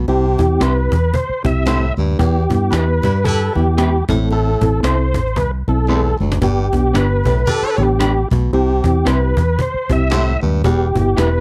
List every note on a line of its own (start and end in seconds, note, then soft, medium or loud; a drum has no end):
0.08 0.35 C2 loud
0.08 0.47 C3 medium
0.08 0.25 C4 medium
0.08 0.25 E4 medium
0.08 0.25 G4 medium
0.08 0.63 G4 medium
0.08 cajon slap soft
0.08 muted conga medium
0.39 0.58 E2 medium
0.39 0.95 C4 medium
0.39 0.95 E4 medium
0.39 0.95 G4 medium
0.39 cajon bass medium
0.39 muted conga medium
0.60 0.87 C2 medium
0.60 0.71 C4 medium
0.60 0.71 E4 medium
0.60 0.72 G4 medium
0.60 1.16 B4 medium
0.60 0.72 C5 loud
0.60 cajon slap loud
0.60 high conga medium
0.92 1.10 E2 loud
0.92 cajon bass loud
0.92 muted conga soft
1.04 cajon slap soft
1.13 1.43 C5 loud
1.13 cajon bass loud
1.13 low conga medium
1.29 muted fingered electric bass stroke soft
1.44 1.90 C2 medium
1.44 1.85 C4 medium
1.44 1.85 E4 medium
1.44 1.85 G4 medium
1.44 1.94 E5 medium
1.44 cajon bass loud
1.44 muted conga soft
1.66 1.91 A2 medium
1.66 1.77 C4 medium
1.66 1.77 E4 medium
1.66 1.78 G4 loud
1.66 1.78 C5 loud
1.66 cajon slap loud
1.66 high conga medium
1.98 2.16 D#2 loud
1.98 2.15 G2 medium
1.98 cajon slap soft
1.98 high conga medium
2.19 2.46 E2 loud
2.19 2.44 E2 medium
2.19 2.36 B3 medium
2.19 2.36 E4 medium
2.19 2.36 G4 medium
2.19 2.74 G4 medium
2.19 cajon bass loud
2.19 muted conga medium
2.50 2.69 G2 medium
2.50 3.06 B3 medium
2.50 3.06 E4 medium
2.50 3.06 G4 medium
2.50 cajon bass medium
2.50 muted conga soft
2.71 2.99 E2 loud
2.71 2.83 B3 medium
2.71 2.83 E4 medium
2.71 2.83 G4 medium
2.71 3.26 B4 loud
2.71 2.83 B4 medium
2.71 cajon slap loud
2.71 high conga medium
3.02 3.48 G2 medium
3.02 3.21 G2 medium
3.02 3.12 E4 medium
3.02 3.12 G4 medium
3.02 3.12 B4 medium
3.02 cajon bass loud
3.02 muted conga soft
3.15 cajon slap soft
3.24 3.65 E4 loud
3.24 3.65 G4 medium
3.24 3.53 A4 loud
3.24 3.65 B4 loud
3.24 cajon bass loud
3.24 low conga medium
3.55 4.01 E2 medium
3.55 3.97 B3 medium
3.55 3.97 E4 medium
3.55 4.05 G4 medium
3.55 3.97 G4 medium
3.55 cajon slap soft
3.55 muted conga soft
3.55 low conga medium
3.77 3.88 B3 medium
3.77 3.89 E4 medium
3.77 3.89 G4 medium
3.77 3.89 B4 medium
3.77 cajon slap loud
3.77 high conga medium
4.09 4.54 A1 loud
4.09 4.26 A2 medium
4.09 4.49 C4 medium
4.09 4.49 E4 medium
4.09 4.49 A4 medium
4.09 cajon bass loud
4.09 high conga medium
4.30 4.70 A2 medium
4.30 4.81 A4 loud
4.30 cajon slap soft
4.30 muted conga soft
4.61 4.80 A1 medium
4.61 5.18 C4 medium
4.61 5.18 E4 medium
4.61 5.18 A4 medium
4.61 cajon bass medium
4.61 muted conga medium
4.83 5.14 C2 loud
4.83 4.94 C4 medium
4.83 4.94 E4 medium
4.83 4.94 A4 loud
4.83 4.95 C5 medium
4.83 5.38 C5 loud
4.83 cajon slap loud
4.83 high conga medium
5.14 5.36 A1 medium
5.14 cajon bass loud
5.14 cajon slap soft
5.14 muted conga soft
5.26 cajon slap soft
5.36 5.63 C2 loud
5.36 5.51 B4 loud
5.36 cajon bass loud
5.36 low conga medium
5.68 6.13 B1 medium
5.68 6.08 C4 medium
5.68 6.08 E4 medium
5.68 6.08 A4 medium
5.68 6.17 A4 medium
5.68 cajon slap soft
5.68 muted conga soft
5.88 6.13 E2 medium
5.88 5.99 C4 medium
5.88 6.00 E4 medium
5.88 6.00 A4 medium
5.88 6.00 C5 medium
5.88 cajon slap soft
5.88 high conga medium
6.20 6.39 F#1 medium
6.20 6.37 D2 medium
6.20 cajon slap soft
6.20 high conga medium
6.32 cajon slap medium
6.41 6.68 G1 loud
6.41 6.66 G2 medium
6.41 6.58 B3 medium
6.41 6.58 D4 medium
6.41 6.58 G4 medium
6.41 6.97 G4 medium
6.41 cajon bass loud
6.41 muted conga soft
6.72 6.91 B1 medium
6.72 7.29 B3 medium
6.72 7.29 D4 medium
6.72 7.29 G4 medium
6.72 cajon bass medium
6.72 muted conga medium
6.94 7.21 G1 loud
6.94 7.05 B3 medium
6.94 7.05 D4 medium
6.94 7.05 G4 medium
6.94 7.05 B4 medium
6.94 7.50 B4 loud
6.94 cajon slap loud
6.94 high conga medium
7.25 7.44 B1 medium
7.25 7.42 A2 medium
7.25 7.35 D4 medium
7.25 7.35 G4 medium
7.25 7.35 B4 medium
7.25 cajon bass medium
7.37 cajon slap soft
7.46 7.87 D4 loud
7.46 7.87 G4 loud
7.46 7.80 A4 loud
7.46 7.86 B4 loud
7.46 cajon bass loud
7.46 low conga medium
7.62 muted fingered electric bass stroke soft
7.78 8.23 A1 medium
7.78 8.19 B3 medium
7.78 8.19 D4 medium
7.78 8.19 G4 medium
7.78 8.29 G4 medium
7.78 cajon slap soft
7.78 muted conga soft
7.78 low conga medium
7.99 8.10 B3 medium
7.99 8.11 D4 medium
7.99 8.11 G4 medium
7.99 8.11 B4 medium
7.99 cajon slap loud
7.99 high conga medium
8.31 8.50 B1 medium
8.31 8.49 B2 medium
8.31 cajon bass medium
8.31 high conga medium
8.53 8.79 C2 loud
8.53 8.92 C3 medium
8.53 8.70 C4 medium
8.53 8.70 E4 medium
8.53 8.70 G4 medium
8.53 9.08 G4 medium
8.53 cajon slap soft
8.53 muted conga medium
8.84 9.03 E2 medium
8.84 9.40 C4 medium
8.84 9.40 E4 medium
8.84 9.40 G4 medium
8.84 cajon bass medium
8.84 muted conga soft
9.05 9.33 C2 medium
9.05 9.16 C4 medium
9.05 9.17 E4 medium
9.05 9.17 G4 loud
9.05 9.60 B4 medium
9.05 9.17 C5 loud
9.05 cajon slap loud
9.05 high conga medium
9.37 9.56 E2 loud
9.37 cajon bass medium
9.37 muted conga soft
9.49 cajon slap soft
9.59 9.92 C5 loud
9.59 cajon bass loud
9.59 low conga medium
9.74 muted fingered electric bass stroke soft
9.89 10.35 C2 medium
9.89 10.31 C4 medium
9.89 10.30 E4 medium
9.89 10.31 G4 medium
9.89 10.40 E5 loud
9.89 cajon bass loud
9.89 muted conga soft
10.11 10.36 A2 loud
10.11 10.22 C4 medium
10.11 10.22 E4 medium
10.11 10.23 G4 loud
10.11 10.23 C5 medium
10.11 cajon slap loud
10.11 high conga medium
10.42 10.61 D#2 loud
10.42 10.60 G2 medium
10.42 cajon slap soft
10.42 high conga medium
10.64 10.91 E1 loud
10.64 10.89 E2 medium
10.64 10.81 B3 medium
10.64 10.81 E4 medium
10.64 10.81 G4 medium
10.64 11.20 G4 medium
10.64 cajon bass loud
10.64 muted conga medium
10.95 11.14 G1 medium
10.95 11.40 B3 medium
10.95 11.40 E4 medium
10.95 11.01 F#4 medium
10.95 cajon bass medium
10.95 muted conga medium
11.02 11.40 G4 medium
11.17 11.40 E1 loud
11.17 11.28 B3 loud
11.17 11.28 E4 loud
11.17 11.28 G4 loud
11.17 11.28 B4 loud
11.17 11.40 B4 loud
11.17 cajon slap loud
11.17 high conga medium